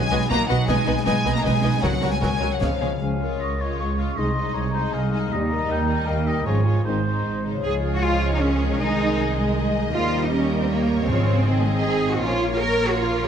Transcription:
Already playing: harp B2 F#3 B3 F#4 B4 F#5, cello section G#3, violin section G#5
0.02 harp D#4
0.10 double bass section B1, viola section B3 F#4, violin section B4 D#5, harp D#5
0.20 harp B5, snare
0.29 double bass section B1, cello section A#3, viola section B3 F#4, violin section B4 D#5 A#5, harp D#5, concert bass drum
0.39 harp B4
0.48 double bass section B1, cello section F#3, viola section B3 F#4, harp D#4, violin section B4 D#5 F#5, snare
0.59 harp B3
0.68 double bass section B1, harp B2, cello section G#3, viola section B3 D#4, violin section B4 D#5 G#5, concert bass drum, snare
0.77 harp G#3
0.86 double bass section B1, viola section B3 D#4, harp B3, violin section B4 D#5
0.97 harp D#4, snare
1.05 double bass section B1, cello section G#3, viola section B3 D#4, violin section B4 D#5 G#5, harp B4, concert bass drum, snare
1.15 harp D#4
1.24 double bass section B1, viola section B3 D#4, violin section B4 D#5, harp D#5, snare
1.34 cello section A#3, violin section A#5, harp B5, snare
1.43 double bass section B1, cello section G#3, viola section B3 D#4, violin section B4 D#5 G#5, harp D#5, concert bass drum, snare
1.53 harp B4
1.63 double bass section B1, viola section B3 D#4, harp D#4, violin section B4 D#5
1.72 harp B3
1.81 double bass section C#2, harp C#3, cello section F#3, viola section F#3 F#4, violin section A#4 C#5 F#5, concert bass drum, snare
1.92 harp A#3
2.01 double bass section C#2, viola section F#3 F#4, harp C#4, violin section A#4 C#5
2.11 cello section G#3, harp F#4, violin section G#5
2.21 double bass section C#2, viola section F#3 F#4, cello section G#3, violin section A#4 C#5 G#5, harp A#4, concert bass drum, snare
2.32 harp C#5
2.40 double bass section C#2, viola section F#3 F#4, violin section A#4 C#5, harp F#5
2.51 cello section F#3, violin section F#5, harp A#5
2.60 double bass section C#2, harp C#3, cello section F3, viola section G#3 C#4, violin section G#4 C#5 F5, concert bass drum, snare
2.71 harp G#3
2.80 double bass section C#2, viola section G#3 C#4, harp C#4, violin section G#4 C#5
2.92 harp G#4
3.00 cello section C#2, double bass section C#2, harp C#3, french horn section F3 C#4, clarinet G#4, oboe F5, flute section G#5
3.21 harp G#3, viola section G#3, violin section F4 C#5, clarinet A#4
3.40 double bass section C#2, cello section C#2, harp F4, oboe D#5, flute section C#6
3.58 viola section G#3, violin section F4 C#5, harp G#4, oboe C#5
3.79 double bass section C#2, cello section C#2, harp F4, clarinet G#4, oboe C#5, flute section C#6
3.98 viola section G#3, harp G#3, violin section F4 C#5, oboe F5
4.17 cello section C2, double bass section C2, harp C3, viola section G#3, french horn section G#3 D#4, violin section D#4 D#5, clarinet G#4, oboe D#5, flute section C6
4.36 harp G#3, viola section G#3, violin section D#4 D#5
4.54 cello section C2, double bass section C2, harp D#4, oboe C#5, flute section A#5
4.73 viola section G#3, violin section D#4 D#5, harp G#4, oboe C5
4.92 cello section C2, double bass section C2, harp D#4, oboe F5, flute section G#5
5.11 viola section G#3, harp G#3, violin section D#4 D#5, flute section G#5
5.30 cello section D#2, double bass section D#2, harp D#3, french horn section G3 D#4, clarinet G4, oboe D#5, flute section A#5
5.48 viola section G3, harp D#4, violin section D#4 D#5
5.53 clarinet A#4
5.68 double bass section D#2, cello section D#2, harp G4, oboe G5
5.87 viola section G3, violin section D#4 D#5, harp D#5
6.06 double bass section D#2, cello section D#2, clarinet A#4, harp A#4, oboe F5, flute section G5
6.26 viola section G3, violin section D#4 D#5, harp G4, oboe D#5
6.45 double bass section G#1, harp G#2, cello section G#2, french horn section F3 C#4, viola section G#3, violin section F4 C#5, clarinet G#4, oboe C#5, flute section G#5
6.64 viola section G#3, clarinet F4, harp F4 G#4, violin section F4 C#5
6.83 double bass section G#1, harp G#2, cello section G#2, french horn section D#3 C4, viola section G#3, violin section D#4 C5, clarinet G#4, oboe C5, flute section C6
7.04 viola section G#3, harp C4, violin section D#4 C5
7.24 double bass section G#1, cello section G#2, harp D#4
7.43 harp C#3 C5, viola section G#3, violin section D#4 C5
7.50 harp C#4
7.55 harp F4
7.60 viola section G#3 F4, harp G#4
7.64 double bass section C#2, trombone section F3 G#3, violin section G#4 C#5, cello section G#4
7.95 cello section F#4
8.03 cello section F4, violin section G#4
8.33 cello section D#4
8.42 cello section C#4, violin section A#4
8.62 harp C3
8.66 harp D#4
8.71 cello section C#4, harp G#4
8.79 double bass section C2, viola section D#4, cello section D#4, violin section D#5
8.83 trombone section D#3
9.39 cello section G#3
9.57 violin section G#4
9.77 harp D#3
9.82 harp D#4
9.86 harp G4
9.90 double bass section D#2, harp A#4, violin section A#4
9.95 viola section G3 G4, trombone section G3 A#3, cello section F4, violin section C5
10.24 cello section D#4
10.33 cello section C#4, violin section A#4
10.62 cello section C4
10.70 cello section A#3, violin section C#5
10.90 harp G#2
10.95 harp C#3
11.00 cello section A#3, harp F4
11.04 harp C#6
11.08 double bass section G#1, timpani G#2, trombone section C#3 F3, viola section G#3 F4, cello section C4, violin section G#4 C#5
11.28 harp G#2
11.33 harp C4
11.37 harp D#4
11.42 harp D#5, violin section D#5
11.46 trombone section D#3 C4, viola section C4 D#4, violin section C5
11.65 cello section G#3
11.83 cello section G#4, violin section C5
12.05 harp A#2
12.09 harp A#3, cello section F#4
12.14 harp C#4 A#4
12.22 double bass section A#1, trombone section F3 C#4, viola section A#3 A#4, cello section F4, violin section C#5
12.52 cello section F4
12.60 cello section A#4, violin section C#5
12.89 cello section F#4
12.99 cello section F4
13.18 harp D#3
13.23 harp A#3

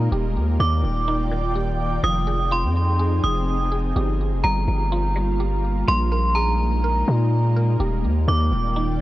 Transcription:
Already playing: ambient pad A#3, synth pluck G#4 A#4
0.12 808-style bass D#1, ambient pad D#3 F4 D5 G5, synth pluck G4
0.36 808-style bass D#2
0.60 808-style bass D#2, synth pluck D#3, synth bell D6
0.84 808-style bass D#1
1.08 synth pluck D#4
1.32 synth pluck D#3
1.56 synth pluck G4
2.04 808-style bass F1, ambient pad F3 C4 D#4 G#4, synth pluck F3, synth bell D#6
2.27 synth pluck G#4
2.52 synth pluck F4, synth bell C6
2.64 808-style bass F2
3.00 synth pluck G#4
3.24 808-style bass F1, synth bell D#6
3.72 synth pluck G#4
3.96 808-style bass G1, ambient pad G3 A#3 F4, synth pluck G4
4.32 808-style bass F1
4.44 808-style bass G1, synth pluck G3, synth bell A#5
4.68 808-style bass G1
4.92 synth pluck F4
5.16 synth pluck G3
5.40 synth pluck G4
5.87 808-style bass A#1, ambient pad G#3 D#4, synth pluck A#3, synth bell C6
6.12 synth pluck A#4
6.35 synth pluck G#4, synth bell A#5
6.84 synth pluck A#4
7.08 808-style bass A#2
7.56 synth pluck A#4
7.80 808-style bass D#1, ambient pad D#3 F4 D5 G5, synth pluck G4
8.04 808-style bass D#2
8.28 808-style bass D#2, synth pluck D#3, synth bell D6
8.52 808-style bass D#1
8.76 synth pluck D#4

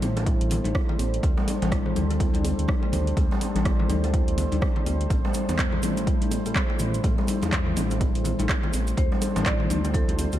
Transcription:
Already playing: analog synth pad G3 E4 A4 C5
0.02 analog synth bass A1, kalimba C4, open hi-hat, mid tom, muted conga, high conga, djembe tone
0.16 kalimba D4, closed hi-hat, djembe slap
0.26 kalimba E4, kick, closed hi-hat, djembe tone
0.41 analog synth bass A1, closed hi-hat
0.50 open hi-hat, muted conga, djembe tone, low conga
0.64 analog synth bass A1, closed hi-hat, high conga
0.75 kick, cross-stick, djembe tone
0.89 kalimba A3, muted conga, low conga
0.99 analog synth bass A1, open hi-hat, djembe tone
1.14 closed hi-hat
1.23 analog synth bass D2, kalimba A3, analog synth pad D4, kick, closed hi-hat, muted conga, djembe tone
1.37 kalimba G3, djembe slap
1.48 open hi-hat, high conga, djembe tone
1.62 analog synth bass A1, closed hi-hat, mid tom, djembe slap, muted conga, high conga
1.72 kalimba E4, kick, cross-stick, closed hi-hat, djembe tone
1.86 low conga
1.96 analog synth bass D2, kalimba C4, open hi-hat, mid tom, muted conga, high conga, djembe tone
2.10 kalimba D4, closed hi-hat, djembe slap
2.20 kalimba E4, kick, closed hi-hat, djembe tone
2.34 analog synth bass D2, closed hi-hat, high conga
2.44 open hi-hat, muted conga, djembe tone
2.59 analog synth bass D2, closed hi-hat
2.68 kick, cross-stick, high conga, djembe tone
2.83 kalimba A3, muted conga
2.92 analog synth bass D2, open hi-hat, mid tom, high conga, djembe tone, low conga
3.07 closed hi-hat
3.17 analog synth bass D2, kalimba A3, kick, closed hi-hat, muted conga, djembe tone
3.31 kalimba G3, djembe slap
3.41 open hi-hat, djembe tone, high conga
3.55 analog synth bass A1, closed hi-hat, mid tom, djembe slap, muted conga, high conga
3.65 kalimba E4, kick, cross-stick, closed hi-hat, djembe tone
3.80 low conga
3.89 analog synth bass D2, kalimba C4, open hi-hat, mid tom, muted conga, djembe tone, high conga
4.04 kalimba D4, closed hi-hat, djembe slap
4.14 kalimba E4, kick, closed hi-hat, djembe tone
4.28 analog synth bass D2, closed hi-hat
4.38 open hi-hat, muted conga, djembe tone, low conga
4.52 analog synth bass D2, closed hi-hat, high conga
4.61 kick, cross-stick, djembe tone
4.76 kalimba D4, muted conga, low conga
4.86 analog synth bass D2, kalimba A3, open hi-hat, djembe tone
5.01 closed hi-hat
5.10 analog synth bass A1, kalimba A3, analog synth pad E4, kick, closed hi-hat, muted conga, djembe tone, maracas
5.25 kalimba G3, djembe slap
5.34 open hi-hat, high conga, djembe tone, maracas
5.49 analog synth bass E2, closed hi-hat, mid tom, djembe slap, muted conga, high conga, maracas
5.58 kalimba E4, kick, cross-stick, clap, closed hi-hat, djembe tone, maracas
5.72 low conga
5.83 analog synth bass A1, kalimba C4, open hi-hat, mid tom, muted conga, djembe tone, high conga, maracas
5.97 kalimba D4, closed hi-hat, djembe slap, maracas
6.07 kalimba E4, kick, closed hi-hat, djembe tone, maracas
6.21 analog synth bass A1, closed hi-hat, high conga
6.31 open hi-hat, muted conga, djembe tone, maracas
6.46 analog synth bass A1, kalimba A3, closed hi-hat, maracas
6.55 kick, cross-stick, clap, djembe tone, high conga, maracas
6.70 kalimba A3, muted conga
6.79 analog synth bass A1, open hi-hat, mid tom, djembe tone, high conga, low conga, maracas
6.94 closed hi-hat, maracas
7.03 analog synth bass A1, kalimba A3, kick, closed hi-hat, muted conga, djembe tone, maracas
7.18 kalimba G3, djembe slap
7.28 open hi-hat, djembe tone, high conga, maracas
7.42 analog synth bass E2, closed hi-hat, mid tom, muted conga, djembe slap, high conga, maracas
7.52 kalimba E4, kick, cross-stick, clap, closed hi-hat, djembe tone, maracas
7.67 low conga
7.76 analog synth bass A1, kalimba C4, open hi-hat, mid tom, muted conga, high conga, djembe tone, maracas
7.91 kalimba D4, closed hi-hat, djembe slap, maracas
8.01 kalimba E4, kick, closed hi-hat, djembe tone, maracas
8.15 analog synth bass A1, closed hi-hat
8.24 open hi-hat, muted conga, djembe tone, low conga, maracas
8.39 analog synth bass A1, kalimba A3, closed hi-hat, high conga, maracas
8.49 kick, cross-stick, clap, djembe tone, maracas
8.63 kalimba A3, muted conga, low conga
8.73 analog synth bass A1, open hi-hat, djembe tone, maracas
8.87 closed hi-hat, maracas
8.97 analog synth bass D2, analog synth pad G3 D4 A4 C5, kalimba A3, marimba C5, kick, closed hi-hat, muted conga, djembe tone, maracas
9.12 kalimba G3, djembe slap
9.22 open hi-hat, high conga, djembe tone, maracas
9.36 analog synth bass A1, closed hi-hat, mid tom, djembe slap, muted conga, high conga, maracas
9.46 kalimba E4, marimba D5, kick, cross-stick, clap, closed hi-hat, djembe tone, maracas
9.60 low conga
9.69 analog synth bass D2, kalimba C4, open hi-hat, mid tom, muted conga, djembe tone, high conga, maracas
9.84 kalimba D4, closed hi-hat, djembe slap, maracas
9.94 kalimba E4, marimba A4, kick, closed hi-hat, djembe tone, maracas
10.08 analog synth bass D2, closed hi-hat, high conga
10.19 open hi-hat, muted conga, djembe tone, maracas
10.32 analog synth bass D2, kalimba A3, closed hi-hat, maracas

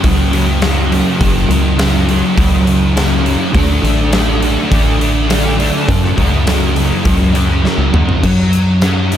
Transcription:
Already playing: distorted electric guitar A#3
0.03 fm bass C#2, distorted electric guitar F#2 C#3 F#3, kick, open hi-hat
0.32 distorted electric guitar C#3 F#3, open hi-hat
0.61 distorted electric guitar F#2 C#3 F#3, snare, open hi-hat
0.91 distorted electric guitar C#3 F#3, open hi-hat
1.19 fm bass F#1, distorted electric guitar F#2 C#3 F#3, kick, open hi-hat
1.37 snare
1.48 fm bass C#2, distorted electric guitar C#3 F#3, open hi-hat
1.77 distorted electric guitar F#2 C#3 F#3, snare, open hi-hat
2.07 distorted electric guitar C#3 F#3, open hi-hat
2.36 fm bass C#2, distorted electric guitar F#2 C#3 F#3, kick, open hi-hat
2.64 distorted electric guitar C#3 F#3, open hi-hat
2.94 distorted electric guitar F#2 C#3 F#3, snare, open hi-hat
3.23 distorted electric guitar C#3 F#3, open hi-hat
3.52 fm bass D2, distorted electric guitar D3 A3 D4, kick, open hi-hat
3.82 fm bass A1, distorted electric guitar A3 D4, open hi-hat
4.11 distorted electric guitar D3 A3 D4, snare, open hi-hat
4.41 distorted electric guitar A3 D4, open hi-hat
4.70 fm bass A1, distorted electric guitar D3 A3 D4, kick, open hi-hat
5.00 distorted electric guitar A3 D4, open hi-hat
5.28 distorted electric guitar D3 A3 D4, snare, open hi-hat
5.58 distorted electric guitar A3 D4, open hi-hat
5.87 distorted electric guitar F#2 C#3 F#3, fm bass F#2, kick, open hi-hat
6.04 snare
6.16 fm bass C#2, distorted electric guitar C#3 F#3, kick, open hi-hat
6.46 distorted electric guitar F#2 C#3 F#3, snare, open hi-hat
6.76 distorted electric guitar C#3 F#3, open hi-hat
7.04 fm bass C#2, distorted electric guitar F#2 C#3 F#3, kick, open hi-hat
7.33 distorted electric guitar C#3 F#3, open hi-hat
7.63 distorted electric guitar F#2 C#3 F#3, snare
7.78 fm bass C#2
7.93 fm bass D#2, distorted electric guitar C#3 F#3, mid tom
8.08 fm bass F2, floor tom
8.23 fm bass F#2, distorted electric guitar F#3, kick, crash
8.39 snare
8.53 closed hi-hat
8.82 distorted electric guitar C#4, snare, closed hi-hat
9.12 distorted electric guitar D#4, closed hi-hat

